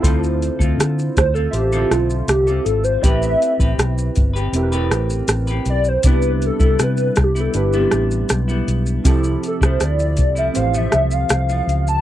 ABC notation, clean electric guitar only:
X:1
M:4/4
L:1/16
Q:1/4=80
K:Ddor
V:1 name="Clean electric guitar"
[D,CFA]3 [CFA]4 [CFA]2 [D,CFA]4 [CFA]3 | [A,CGB]3 [CGB]4 [CGB]2 [A,CGB]4 [CGB]3 | [C,G,B,E]3 [G,B,E]4 [G,B,E]2 [C,G,B,E]4 [G,B,E]3 | [C,F,A,E]3 [F,A,E]4 [F,A,E]2 [C,F,A,]4 [F,A,]3 |]